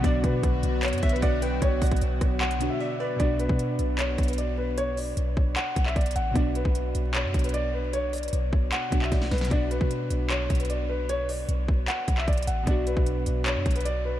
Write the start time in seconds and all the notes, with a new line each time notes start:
Already playing: D3 F#3
0.00 B1 B2 B3 F#4 D5, kick, closed hi-hat
0.05 D4 F#4
0.24 B2 B4, kick, closed hi-hat
0.43 B1, kick, closed hi-hat
0.63 B1, closed hi-hat
0.83 C#5, clap, closed hi-hat
0.88 closed hi-hat
0.93 F#2, closed hi-hat
0.98 closed hi-hat
1.03 B1 E5, kick, closed hi-hat
1.09 B4, closed hi-hat
1.16 closed hi-hat
1.22 B1 D5 F#5, kick, closed hi-hat
1.42 B4 G5, closed hi-hat
1.62 B1 C#5, kick, closed hi-hat
1.82 B1 D5 F#5, kick, closed hi-hat, open hi-hat
1.87 closed hi-hat
1.91 kick, closed hi-hat
1.96 closed hi-hat
2.01 B1, closed hi-hat
2.21 B1, kick, cross-stick, closed hi-hat
2.41 F#5, clap, closed hi-hat
2.51 closed hi-hat
2.59 B2 B3 D4 F#4, closed hi-hat
2.70 E5
2.80 D5 E5
3.00 B4 D5
3.16 B1 B2 B3 D5, kick, closed hi-hat
3.21 D4 F#4
3.39 B4, closed hi-hat
3.49 B2, kick
3.59 closed hi-hat
3.79 B1, closed hi-hat
3.98 C#5, clap, closed hi-hat
4.18 B1, kick, closed hi-hat
4.23 closed hi-hat
4.28 B4, closed hi-hat
4.33 closed hi-hat
4.38 D5, closed hi-hat
4.58 B4
4.78 C#5, closed hi-hat
4.97 D5, open hi-hat
5.17 B1, closed hi-hat
5.37 B1, kick
5.56 F#5, clap, closed hi-hat
5.76 B1, kick, closed hi-hat
5.86 E5, clap
5.96 B1 D5, kick, closed hi-hat
6.01 closed hi-hat
6.06 closed hi-hat
6.11 closed hi-hat
6.16 A1 F#5, closed hi-hat
6.31 B2 B3
6.36 B1 D4 F#4 D5, kick, closed hi-hat
6.55 B4, closed hi-hat
6.65 B1, kick
6.75 closed hi-hat
6.95 B1, closed hi-hat
7.14 C#5, clap, closed hi-hat
7.24 F#2
7.34 B1, kick, closed hi-hat
7.39 closed hi-hat
7.44 B4, closed hi-hat
7.49 closed hi-hat
7.54 D5, closed hi-hat
7.74 B4
7.93 C#5, closed hi-hat
8.13 D5, closed hi-hat, open hi-hat
8.18 closed hi-hat
8.23 closed hi-hat
8.28 closed hi-hat
8.33 B1, closed hi-hat
8.53 B1, kick
8.72 F#5, clap, closed hi-hat
8.91 B1 B2 B3 D4 F#4, kick, closed hi-hat
9.02 E5, clap
9.12 B1 D5, kick, snare, closed hi-hat
9.22 snare
9.31 B1 B4, snare, closed hi-hat
9.38 snare, closed hi-hat
9.45 B2, closed hi-hat
9.50 B1 B3 D4 D5, kick, closed hi-hat
9.56 F#4
9.71 B4, closed hi-hat
9.81 B2, kick
9.91 closed hi-hat
10.10 B1, closed hi-hat
10.30 C#5, clap, closed hi-hat
10.50 B1, kick, closed hi-hat
10.55 closed hi-hat
10.60 B4, closed hi-hat
10.65 closed hi-hat
10.70 D5, closed hi-hat
10.89 B4
11.09 C#5, closed hi-hat
11.29 D5, open hi-hat
11.49 B1, closed hi-hat
11.68 B1, kick
11.88 F#5, clap, closed hi-hat
12.08 B1, kick, closed hi-hat
12.18 E5, clap
12.28 B1 D5, kick, closed hi-hat
12.33 closed hi-hat
12.38 closed hi-hat
12.42 closed hi-hat
12.47 A1 F#5, closed hi-hat
12.63 B2 B3 D5, kick, closed hi-hat
12.67 B1 D4 F#4
12.87 B4, closed hi-hat
12.97 B1, kick
13.06 closed hi-hat
13.26 B1, closed hi-hat
13.46 C#5, clap, closed hi-hat
13.56 F#2
13.66 B1, kick, closed hi-hat
13.71 closed hi-hat
13.76 B4, closed hi-hat
13.81 closed hi-hat
13.85 D5, closed hi-hat
14.05 B4